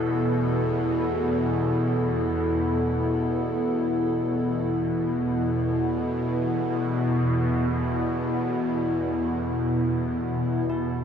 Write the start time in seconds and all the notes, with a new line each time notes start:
Already playing: E2 B2 B3 E4 A4
10.68 E2 B2 E4